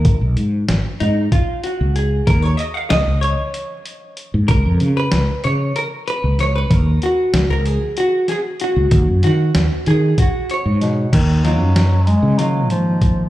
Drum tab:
CC |-------|-------|-------|-------|
HH |xxxxxxx|xxxxxxx|xxxxxxx|xxxxxxx|
SD |--o----|--o----|--o---o|--o--o-|
BD |o---o--|o------|o------|o------|

CC |-------|x------|
HH |xxxxxxx|xxxxxxx|
SD |-oo---o|--o----|
BD |o---o--|o-----o|